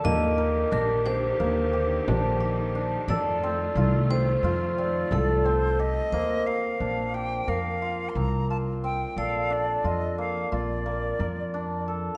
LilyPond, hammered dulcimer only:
\new Staff \with { instrumentName = "Hammered dulcimer" } { \time 9/8 \key ees \lydian \tempo 4. = 59 bes8 bes'8 d'8 g'8 bes8 g'8 d'8 g'8 d'8 | a'8 c'8 f'8 c'8 f'8 c'8 a'8 c'8 g'8 | bes8 bes'8 d'8 g'8 bes8 f'8 c'8 f'8 c'8 | a'8 d'8 f'8 bes8 f'8 bes8 bes'8 d'8 a'8 | }